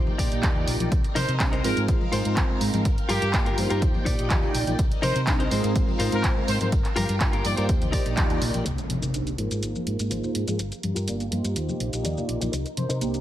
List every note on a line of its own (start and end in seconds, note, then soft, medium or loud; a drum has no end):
0.00 0.28 A#3 medium
0.00 0.29 D#4 medium
0.00 0.91 D#4 medium
0.00 0.29 F4 medium
0.00 0.29 G4 medium
0.00 0.29 C5 medium
0.00 0.91 D5 medium
0.00 0.90 G5 medium
0.07 tambourine soft
0.07 high conga medium
0.07 low conga medium
0.18 0.29 A#1 medium
0.18 0.67 D#4 loud
0.18 0.67 G4 loud
0.18 0.68 D5 loud
0.18 kick medium
0.18 open hi-hat loud
0.18 tambourine medium
0.31 0.41 A#1 loud
0.31 0.53 A#3 medium
0.31 0.53 D#4 medium
0.31 0.53 F4 medium
0.31 0.53 G4 medium
0.31 0.53 D#5 medium
0.31 closed hi-hat soft
0.31 tambourine soft
0.43 kick loud
0.43 clap loud
0.43 closed hi-hat medium
0.43 tambourine soft
0.43 high conga medium
0.55 0.77 A#3 medium
0.55 0.77 D#4 medium
0.55 0.77 F4 medium
0.55 0.77 G4 medium
0.55 0.77 D5 medium
0.55 tambourine soft
0.55 low conga medium
0.67 0.78 A#1 loud
0.67 open hi-hat loud
0.67 tambourine medium
0.80 0.89 A#1 medium
0.80 0.89 A#3 medium
0.80 0.89 D#4 medium
0.80 0.89 F4 medium
0.80 0.89 G4 medium
0.80 0.89 D5 medium
0.80 closed hi-hat soft
0.80 tambourine soft
0.80 high conga medium
0.92 1.02 C2 loud
0.92 2.83 C4 medium
0.92 1.63 A#4 medium
0.92 1.64 D#5 medium
0.92 kick loud
0.92 closed hi-hat medium
0.92 tambourine soft
1.04 closed hi-hat soft
1.04 tambourine soft
1.15 1.26 C3 medium
1.15 1.34 D#4 loud
1.15 1.34 A#4 loud
1.15 1.34 C5 medium
1.15 1.35 C5 loud
1.15 open hi-hat loud
1.15 tambourine medium
1.15 high conga medium
1.28 1.42 C3 medium
1.28 closed hi-hat medium
1.28 tambourine soft
1.40 1.60 C2 medium
1.40 1.55 G3 medium
1.40 1.55 C4 medium
1.40 1.55 D4 medium
1.40 1.56 D#4 medium
1.40 1.56 A#4 medium
1.40 kick loud
1.40 clap loud
1.40 closed hi-hat medium
1.40 tambourine medium
1.52 1.63 D#4 medium
1.52 1.63 A#4 medium
1.52 1.64 C5 loud
1.52 closed hi-hat soft
1.52 tambourine soft
1.63 1.75 G#2 medium
1.63 2.22 G#3 medium
1.63 2.22 C4 medium
1.63 2.22 D#4 medium
1.63 2.03 F4 medium
1.63 2.22 F4 medium
1.63 2.22 G#4 medium
1.63 1.83 A#4 medium
1.63 2.03 A#4 medium
1.63 3.80 A#4 medium
1.63 2.04 C5 medium
1.63 2.84 F5 medium
1.63 open hi-hat loud
1.63 tambourine medium
1.63 high conga medium
1.77 1.86 G#2 medium
1.77 closed hi-hat soft
1.77 tambourine soft
1.88 1.99 G#1 medium
1.88 kick loud
1.88 closed hi-hat medium
1.88 tambourine medium
2.01 tambourine soft
2.01 high conga medium
2.01 low conga medium
2.12 2.23 G#2 medium
2.12 2.61 F4 loud
2.12 2.61 A#4 loud
2.12 2.61 C5 loud
2.12 open hi-hat loud
2.12 tambourine medium
2.25 2.35 G#2 medium
2.25 2.46 G#3 medium
2.25 2.46 C4 medium
2.25 2.46 D#4 medium
2.25 2.46 F4 medium
2.25 2.46 C5 medium
2.25 closed hi-hat medium
2.25 tambourine soft
2.37 2.47 G#1 medium
2.37 kick loud
2.37 clap loud
2.37 closed hi-hat medium
2.37 tambourine soft
2.37 high conga medium
2.49 2.70 G#3 medium
2.49 2.70 C4 medium
2.49 2.71 D#4 medium
2.49 2.71 F4 medium
2.49 2.71 A#4 medium
2.49 tambourine soft
2.49 low conga medium
2.61 2.71 G#2 medium
2.61 open hi-hat loud
2.61 tambourine medium
2.73 2.83 G#2 medium
2.73 2.82 G#3 medium
2.73 2.82 C4 medium
2.73 2.83 D#4 medium
2.73 2.83 F4 medium
2.73 2.83 A#4 medium
2.73 closed hi-hat soft
2.73 tambourine soft
2.73 high conga medium
2.85 2.95 G1 loud
2.85 3.81 F4 medium
2.85 4.77 G5 medium
2.85 kick loud
2.85 closed hi-hat medium
2.97 closed hi-hat soft
2.97 tambourine soft
3.09 3.20 G2 medium
3.09 3.27 F4 loud
3.09 3.58 G4 medium
3.09 3.28 G4 loud
3.09 3.28 A#4 loud
3.09 open hi-hat loud
3.09 tambourine medium
3.09 high conga medium
3.22 3.35 G2 medium
3.22 closed hi-hat medium
3.22 tambourine soft
3.33 3.53 G1 medium
3.33 3.49 A#3 medium
3.33 3.49 D4 medium
3.33 3.49 F4 medium
3.33 3.49 G4 medium
3.33 3.49 A#4 loud
3.33 kick loud
3.33 clap loud
3.33 closed hi-hat medium
3.46 3.57 F4 medium
3.46 3.58 G4 medium
3.46 3.58 A#4 medium
3.46 closed hi-hat soft
3.46 tambourine soft
3.57 3.68 G2 medium
3.57 4.15 A#3 medium
3.57 4.16 D#4 medium
3.57 4.16 F4 medium
3.57 4.16 G4 medium
3.57 4.16 C5 medium
3.57 open hi-hat loud
3.57 tambourine medium
3.57 high conga medium
3.70 3.80 G2 medium
3.70 3.82 F4 medium
3.70 3.82 G4 medium
3.70 3.82 A#4 loud
3.70 closed hi-hat medium
3.70 tambourine soft
3.82 3.92 D#2 medium
3.82 4.78 D#4 medium
3.82 4.78 D5 medium
3.82 kick loud
3.82 closed hi-hat medium
3.82 tambourine medium
3.94 tambourine soft
3.94 high conga loud
3.94 low conga medium
4.05 4.16 A#1 medium
4.05 4.54 D#4 loud
4.05 4.54 G4 loud
4.05 4.55 D5 loud
4.05 kick medium
4.05 open hi-hat loud
4.05 tambourine medium
4.18 4.28 A#1 medium
4.18 4.40 A#3 medium
4.18 4.40 D#4 medium
4.18 4.40 F4 medium
4.18 4.40 G4 medium
4.18 4.40 D#5 medium
4.18 closed hi-hat medium
4.18 tambourine soft
4.29 4.53 F5 medium
4.29 kick loud
4.29 clap loud
4.29 closed hi-hat medium
4.29 tambourine soft
4.29 high conga medium
4.43 4.64 A#3 medium
4.43 4.64 D#4 medium
4.43 4.64 F4 medium
4.43 4.64 G4 medium
4.43 4.64 D5 medium
4.43 tambourine soft
4.43 low conga medium
4.54 4.65 A#1 medium
4.54 4.77 G5 medium
4.54 open hi-hat loud
4.54 tambourine medium
4.67 4.77 A#1 medium
4.67 4.76 A#3 medium
4.67 4.76 D#4 medium
4.67 4.76 F4 medium
4.67 4.76 G4 medium
4.67 4.76 D5 medium
4.67 closed hi-hat medium
4.67 tambourine soft
4.67 high conga medium
4.78 4.89 C2 loud
4.78 6.70 C4 medium
4.78 7.66 A#4 medium
4.78 5.50 D#5 medium
4.78 kick loud
4.78 closed hi-hat medium
4.78 tambourine medium
4.91 closed hi-hat soft
4.91 tambourine soft
5.02 5.13 C3 medium
5.02 5.21 D#4 loud
5.02 5.21 A#4 loud
5.02 5.21 C5 medium
5.02 5.22 C5 loud
5.02 open hi-hat loud
5.02 tambourine medium
5.02 high conga loud
5.16 5.29 C3 medium
5.16 closed hi-hat medium
5.16 tambourine soft
5.27 5.47 C2 medium
5.27 5.42 G3 medium
5.27 5.42 C4 medium
5.27 5.43 D4 medium
5.27 5.43 D#4 medium
5.27 5.43 A#4 medium
5.27 kick loud
5.27 clap loud
5.27 closed hi-hat medium
5.39 5.50 D#4 medium
5.39 5.50 A#4 medium
5.39 5.51 C5 loud
5.39 closed hi-hat soft
5.39 tambourine soft
5.51 5.62 G#2 medium
5.51 6.09 G#3 medium
5.51 6.09 C4 medium
5.51 6.09 D#4 medium
5.51 5.90 F4 medium
5.51 6.10 F4 medium
5.51 6.10 G#4 medium
5.51 5.90 A#4 medium
5.51 5.91 C5 loud
5.51 6.71 F5 medium
5.51 open hi-hat loud
5.51 tambourine loud
5.51 high conga medium
5.64 5.73 G#2 medium
5.64 closed hi-hat medium
5.64 tambourine soft
5.75 5.86 G#1 medium
5.75 kick loud
5.75 closed hi-hat medium
5.75 tambourine medium
5.87 tambourine soft
5.87 high conga medium
5.87 low conga medium
5.99 6.10 G#2 medium
5.99 6.48 F4 loud
5.99 6.48 A#4 loud
5.99 6.48 C5 loud
5.99 open hi-hat loud
5.99 tambourine loud
6.12 6.22 G#2 medium
6.12 6.33 G#3 medium
6.12 6.33 C4 medium
6.12 6.33 D#4 medium
6.12 6.34 F4 medium
6.12 6.30 A#4 medium
6.12 6.34 C5 medium
6.12 closed hi-hat medium
6.12 tambourine soft
6.23 6.34 G#1 medium
6.23 kick loud
6.23 clap loud
6.23 closed hi-hat medium
6.23 tambourine medium
6.23 high conga medium
6.36 6.57 G#3 medium
6.36 6.58 C4 medium
6.36 6.58 D#4 medium
6.36 6.58 F4 medium
6.36 6.58 A#4 medium
6.36 tambourine soft
6.36 low conga medium
6.48 6.58 G#2 medium
6.48 6.56 C5 medium
6.48 open hi-hat loud
6.48 tambourine medium
6.60 6.70 G#2 medium
6.60 6.70 G#3 medium
6.60 6.70 C4 medium
6.60 6.70 D#4 medium
6.60 6.70 F4 medium
6.60 6.70 A#4 medium
6.60 6.68 C5 medium
6.60 closed hi-hat medium
6.60 tambourine soft
6.60 high conga medium
6.72 6.83 G1 loud
6.72 7.68 F4 medium
6.72 8.64 G5 medium
6.72 kick loud
6.72 closed hi-hat medium
6.72 tambourine medium
6.84 clap soft
6.84 closed hi-hat soft
6.84 tambourine soft
6.96 7.07 G2 medium
6.96 7.14 F4 loud
6.96 7.15 G4 loud
6.96 7.15 A#4 loud
6.96 open hi-hat loud
6.96 tambourine loud
6.96 high conga medium
7.08 7.22 G2 medium
7.08 closed hi-hat medium
7.08 tambourine soft
7.20 7.41 G1 medium
7.20 7.36 A#3 medium
7.20 7.36 D4 medium
7.20 7.36 F4 medium
7.20 7.36 G4 medium
7.20 7.36 A#4 medium
7.20 kick loud
7.20 clap loud
7.20 closed hi-hat medium
7.33 7.44 F4 medium
7.33 7.45 G4 medium
7.33 7.45 A#4 loud
7.33 closed hi-hat soft
7.33 tambourine soft
7.44 7.55 G2 medium
7.44 8.02 A#3 medium
7.44 8.03 D#4 medium
7.44 8.03 F4 medium
7.44 8.03 G4 medium
7.44 8.03 C5 medium
7.44 7.53 D5 medium
7.44 open hi-hat loud
7.44 tambourine medium
7.44 high conga medium
7.57 7.67 G2 medium
7.57 7.69 F4 medium
7.57 7.69 G4 medium
7.57 7.69 A#4 loud
7.57 7.65 D5 medium
7.57 closed hi-hat medium
7.57 tambourine soft
7.69 7.93 D#2 medium
7.69 8.65 D#4 medium
7.69 8.65 D5 medium
7.69 kick loud
7.69 closed hi-hat medium
7.82 closed hi-hat soft
7.82 tambourine soft
7.82 high conga medium
7.82 low conga medium
7.92 8.04 A#1 medium
7.92 8.41 D#4 loud
7.92 8.42 G4 loud
7.92 8.42 D5 loud
7.92 kick medium
7.92 open hi-hat loud
7.92 tambourine medium
8.06 8.15 A#1 loud
8.06 8.27 A#3 medium
8.06 8.27 D#4 medium
8.06 8.27 F4 medium
8.06 8.27 G4 medium
8.06 8.27 D#5 medium
8.06 closed hi-hat medium
8.06 tambourine soft
8.17 8.37 D#2 medium
8.17 kick loud
8.17 clap loud
8.17 closed hi-hat medium
8.17 tambourine medium
8.17 high conga medium
8.30 8.51 A#3 medium
8.30 8.51 D#4 medium
8.30 8.51 F4 medium
8.30 8.51 G4 medium
8.30 8.51 D5 medium
8.30 closed hi-hat soft
8.30 tambourine soft
8.30 low conga medium
8.42 8.52 A#1 loud
8.42 open hi-hat loud
8.42 tambourine medium
8.54 8.64 A#1 medium
8.54 8.63 A#3 medium
8.54 8.63 D#4 medium
8.54 8.63 F4 medium
8.54 8.63 G4 medium
8.54 8.63 D5 medium
8.54 closed hi-hat medium
8.54 tambourine soft
8.54 high conga medium
8.65 8.76 C2 medium
8.65 10.57 A#4 medium
8.65 9.38 D#5 medium
8.65 10.57 C6 medium
8.65 muted clean electric guitar stroke loud
8.65 closed hi-hat medium
8.65 tambourine medium
8.65 impact medium
8.65 shaker medium
8.78 muted clean electric guitar stroke soft
8.78 closed hi-hat soft
8.78 shaker soft
8.90 9.00 C3 medium
8.90 closed hi-hat medium
8.90 tambourine medium
8.90 high conga medium
9.02 9.16 C3 medium
9.02 9.20 D#4 medium
9.02 9.21 A#4 medium
9.02 9.21 C5 medium
9.02 closed hi-hat soft
9.02 shaker medium
9.14 9.34 C2 medium
9.14 9.30 A#3 medium
9.14 9.30 D4 medium
9.14 9.30 D#4 medium
9.14 9.30 G4 medium
9.14 9.30 C5 medium
9.14 closed hi-hat medium
9.14 shaker soft
9.27 closed hi-hat soft
9.27 shaker soft
9.38 9.49 G#2 medium
9.38 9.96 A#3 medium
9.38 9.96 D#4 medium
9.38 9.97 F4 medium
9.38 9.96 F4 medium
9.38 9.97 G#4 medium
9.38 9.97 A#4 medium
9.38 9.97 C5 medium
9.38 11.54 F5 medium
9.38 closed hi-hat medium
9.38 tambourine medium
9.38 high conga medium
9.51 9.60 G#2 medium
9.51 closed hi-hat soft
9.51 shaker medium
9.62 9.73 G#1 medium
9.62 closed hi-hat medium
9.62 tambourine medium
9.62 shaker medium
9.75 high conga medium
9.75 shaker soft
9.87 9.97 G#2 medium
9.87 closed hi-hat medium
9.87 tambourine medium
9.99 10.09 G#2 medium
9.99 10.20 A#3 medium
9.99 10.20 D#4 medium
9.99 10.21 F4 medium
9.99 10.21 G#4 medium
9.99 10.21 D#5 medium
9.99 closed hi-hat soft
9.99 shaker medium
10.10 10.21 G#1 medium
10.10 10.29 F4 medium
10.10 10.29 A#4 medium
10.10 10.30 C5 medium
10.10 closed hi-hat medium
10.10 tambourine medium
10.10 high conga medium
10.10 shaker medium
10.23 10.45 A#3 medium
10.23 10.45 D#4 medium
10.23 10.45 F4 medium
10.23 10.45 G#4 medium
10.23 10.45 C5 medium
10.23 low conga medium
10.23 shaker soft
10.35 10.45 G#2 medium
10.35 closed hi-hat medium
10.35 tambourine medium
10.47 10.57 G#2 medium
10.47 10.57 A#3 medium
10.47 10.57 D#4 medium
10.47 10.57 F4 medium
10.47 10.57 G#4 medium
10.47 10.57 C5 medium
10.47 muted clean electric guitar stroke loud
10.47 closed hi-hat soft
10.47 tambourine soft
10.47 high conga medium
10.47 shaker medium
10.58 10.70 G1 medium
10.58 12.51 G4 medium
10.58 11.55 A#5 medium
10.58 muted clean electric guitar stroke loud
10.58 closed hi-hat medium
10.58 tambourine medium
10.58 shaker medium
10.71 muted clean electric guitar stroke soft
10.71 closed hi-hat soft
10.71 shaker soft
10.83 10.94 G2 medium
10.83 closed hi-hat medium
10.83 tambourine medium
10.83 high conga medium
10.95 11.09 G2 medium
10.95 11.14 F4 medium
10.95 11.14 G4 medium
10.95 11.14 A#4 medium
10.95 closed hi-hat soft
10.95 tambourine soft
10.95 shaker medium
11.07 11.28 G1 medium
11.07 11.23 A#3 medium
11.07 11.23 D4 medium
11.07 11.23 F4 medium
11.07 11.23 G4 medium
11.07 11.23 D5 medium
11.07 closed hi-hat medium
11.07 shaker soft
11.20 closed hi-hat soft
11.20 shaker soft
11.31 11.42 G2 medium
11.31 11.90 A#3 medium
11.31 11.90 D#4 medium
11.31 11.90 F4 medium
11.31 11.90 G4 medium
11.31 11.90 C5 medium
11.31 muted clean electric guitar stroke medium
11.31 closed hi-hat medium
11.31 tambourine medium
11.31 high conga medium
11.44 11.54 G2 medium
11.44 muted clean electric guitar stroke soft
11.44 closed hi-hat soft
11.44 tambourine soft
11.44 shaker medium
11.56 11.66 D#2 medium
11.56 13.21 D#4 medium
11.56 12.52 D6 medium
11.56 closed hi-hat medium
11.56 tambourine soft
11.56 shaker soft
11.68 tambourine soft
11.68 high conga medium
11.68 low conga medium
11.68 shaker soft
11.80 11.91 A#1 medium
11.80 closed hi-hat medium
11.80 tambourine medium
11.93 12.02 A#1 medium
11.93 12.14 A#3 medium
11.93 12.14 D#4 medium
11.93 12.14 F4 medium
11.93 12.14 G4 medium
11.93 12.14 D#5 medium
11.93 closed hi-hat soft
11.93 shaker medium
12.04 12.15 D#2 medium
12.04 12.23 D#4 medium
12.04 12.23 G4 medium
12.04 12.23 D5 medium
12.04 closed hi-hat medium
12.04 tambourine soft
12.04 high conga medium
12.04 shaker soft
12.17 12.38 A#3 medium
12.17 12.38 D#4 medium
12.17 12.38 F4 medium
12.17 12.38 G4 medium
12.17 12.39 D5 medium
12.17 tambourine soft
12.17 low conga medium
12.17 shaker soft
12.28 12.39 A#1 medium
12.28 closed hi-hat medium
12.28 tambourine medium
12.41 12.51 A#1 medium
12.41 12.50 A#3 medium
12.41 12.50 D#4 medium
12.41 12.50 F4 medium
12.41 12.50 G4 medium
12.41 12.51 D5 medium
12.41 muted clean electric guitar stroke loud
12.41 closed hi-hat soft
12.41 tambourine soft
12.41 high conga medium
12.41 shaker medium
12.52 12.63 C2 medium
12.52 13.21 A#4 medium
12.52 13.21 C6 medium
12.52 muted clean electric guitar stroke loud
12.52 closed hi-hat medium
12.52 tambourine soft
12.52 shaker soft
12.65 muted clean electric guitar stroke soft
12.65 closed hi-hat soft
12.65 shaker soft
12.77 12.87 C3 medium
12.77 12.96 C5 medium
12.77 closed hi-hat medium
12.77 tambourine medium
12.77 high conga medium
12.89 13.03 C3 medium
12.89 13.07 D#4 medium
12.89 13.08 A#4 medium
12.89 13.08 C5 medium
12.89 closed hi-hat soft
12.89 tambourine soft
12.89 shaker medium
13.01 13.21 C2 medium
13.01 13.17 A#3 medium
13.01 13.17 D4 medium
13.01 13.17 D#4 medium
13.01 13.17 G4 medium
13.01 13.17 C5 medium
13.01 closed hi-hat medium
13.01 tambourine soft
13.01 shaker soft
13.14 closed hi-hat soft
13.14 shaker soft